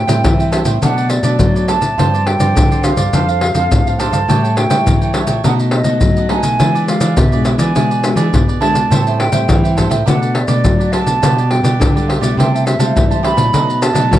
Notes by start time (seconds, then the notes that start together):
Already playing: A2 G5
0.07 A2 G3 C4 E4 C5 E5 G5, pandeiro, maracas
0.23 E3, pandeiro, maracas, surdo
0.39 C5 E5 G5, pandeiro, maracas
0.51 G3 C4 E4 A4 C5 E5 G5, pandeiro, maracas
0.65 A2 C5 E5 G5, pandeiro, maracas
0.82 B2 F#3 A3 D4 A4 B4 D5 F#5, pandeiro, maracas, surdo
0.97 A4 B4 D5, pandeiro, maracas
1.10 D5, muted cavaquinho stroke, pandeiro, maracas
1.23 B2 F#3 A3 D4 A4 B4 D5, pandeiro, maracas
1.39 F#2 F#3, pandeiro, maracas, surdo
1.56 A4 B4 D5, pandeiro, maracas
1.68 F#3 A3 D4 A4 B4 D5 A5, pandeiro, maracas
1.81 A2 A4 B4 D5, pandeiro, maracas
1.98 G2 F3 C4 D4 F4 G4 C5 D5, pandeiro, maracas, surdo
2.14 G4 C5 D5, pandeiro, maracas
2.26 G5, pandeiro
2.39 G2 F3 C4 D4 G4 C5 D5, pandeiro, maracas
2.55 D3, pandeiro, maracas, surdo
2.71 G4 C5 D5, pandeiro, maracas
2.83 F3 C4 D4 F4 G4 C5 D5 F5, pandeiro, maracas
2.96 G2 G4 C5 D5, pandeiro, maracas
3.13 F2 F3 C4 D4 A4 C5 F5, pandeiro, maracas, surdo
3.29 A4 C5 F5, pandeiro, maracas
3.41 muted cavaquinho stroke, pandeiro
3.54 F2 C4 D4 A4 C5 F5, pandeiro, maracas
3.71 A2 F3, pandeiro, maracas, surdo
3.87 A4 C5 F5, pandeiro, maracas
3.99 C4 D4 A4 C5 F5 A5, pandeiro, maracas
4.11 G2 A4 C5 F5, pandeiro, maracas
4.28 A2 G3 C#4 E4 G4 A4 C#5 G5, pandeiro, maracas, surdo
4.43 A4 C#5 G5, pandeiro, maracas
4.57 G5, pandeiro, maracas
4.69 A2 G3 C#4 E4 A4 C#5 G5, pandeiro, maracas
4.86 E3, pandeiro, maracas, surdo
5.01 A4 C#5 G5, pandeiro, maracas
5.14 G3 C#4 E4 G4 A4 C#5 G5, pandeiro, maracas
5.27 A#2 A4 C#5 G5, pandeiro, maracas
5.44 B2 A3 D#4 F#4 A4 B4 D#5 F#5, pandeiro, maracas, surdo
5.59 A4 B4 D#5, pandeiro, maracas
5.71 D#5, muted cavaquinho stroke, pandeiro
5.84 B2 A3 D#4 F#4 A4 B4 D#5, pandeiro, maracas
6.01 F#3, pandeiro, maracas, surdo
6.17 A4 B4 D#5, pandeiro, maracas
6.29 A3 D#4 F#4 A4 B4 D#5 G#5, pandeiro
6.43 B2 A4 B4 D#5, pandeiro, maracas
6.59 E3 G#3 D4 E4 F4 G#4 B4 D5, pandeiro, maracas, surdo
6.74 G#4 B4 D5, pandeiro, maracas
6.87 G#3 D4 F4 F5, pandeiro, maracas
7.01 E3 G#4 B4 D5, pandeiro, maracas
7.17 B2 E5, pandeiro, maracas, surdo
7.32 G#3 D4 F4 G#4 B4 D5, pandeiro, maracas
7.45 E4 G#4 B4 D5 E5, pandeiro, maracas
7.58 E3 G#4 B4 D5 G#5, pandeiro, maracas
7.75 B2 E3 G#3 D4 E4 F4 G#4 B4 D5, pandeiro, maracas, surdo
7.91 G#4 B4 D5, pandeiro, maracas
8.04 G#3 D4 F4, pandeiro, maracas
8.16 E3 G#4 B4 D5, pandeiro, maracas
8.33 B2, pandeiro, maracas, surdo
8.48 G#4 B4 D5, pandeiro, maracas
8.61 D3 G#3 D4 E4 F4 G#4 B4 D5 A5, pandeiro
8.73 B2 G#4 B4 D5, pandeiro, maracas
8.91 A2 G3 C4 E4 A4 C5 E5 G5, pandeiro, maracas, surdo
9.07 C5 E5 G5, pandeiro, maracas
9.19 G5, pandeiro
9.32 A2 G3 C4 E4 C5 E5 G5, pandeiro, maracas
9.48 E3, pandeiro, maracas, surdo
9.64 C5 E5 G5, pandeiro, maracas
9.77 G3 C4 E4 A4 C5 E5 G5, pandeiro, maracas, surdo
9.89 A2 C5 E5 G5, pandeiro, maracas
10.06 B2 A3 D4 F#4 A4 B4 D5 F#5, pandeiro, maracas, surdo
10.22 A4 B4 D5, pandeiro, maracas
10.34 D5, muted cavaquinho stroke, pandeiro
10.48 B2 A3 D4 F#4 A4 B4 D5, pandeiro, maracas
10.64 F#3, pandeiro, maracas, surdo
10.79 A4 B4 D5, pandeiro, maracas
10.93 A3 D4 F#4 A4 B4 D5 A5, pandeiro, maracas
11.06 B2 A4 B4 D5, pandeiro, maracas
11.22 B2 G3 D4 F4 G4 B4 D5, pandeiro, maracas, surdo
11.38 G4 B4 D5, pandeiro, maracas
11.51 G3 D4 F4 G5, pandeiro
11.63 B2 G4 B4 D5, pandeiro, maracas
11.80 B2 D3, pandeiro, maracas, surdo
11.96 G3 D4 F4 G4 B4 D5, pandeiro, maracas
12.08 F4 G4 B4 D5, pandeiro
12.21 B2 G3 A3 E4 G4 B4 D5, pandeiro, maracas
12.37 C3 G4 C5 E5 G5 A5, pandeiro, maracas, surdo
12.54 C5 E5 A5, pandeiro, maracas
12.66 E5, muted cavaquinho stroke, pandeiro, maracas
12.79 C3 G3 A3 E4 C5 E5 A5, pandeiro, maracas
12.87 F5
12.95 C3 E3 E5, pandeiro, maracas, surdo
13.07 G3 D5
13.11 A3 E4 C5 E5 A5, pandeiro, maracas
13.16 E5
13.23 G4 C5 E5 A5 B5, pandeiro
13.36 A#2 F#3 A3 D#4 C5 E5 A5, pandeiro, maracas
13.53 B2 D#4 A4 B4 D#5, pandeiro, maracas, surdo
13.67 A4 B4 D#5, pandeiro, maracas
13.82 A5, pandeiro, maracas
13.93 B2 F#3 A3 D#4 A4 B4 D#5, pandeiro, maracas
14.11 F#2 F#3, pandeiro, maracas, surdo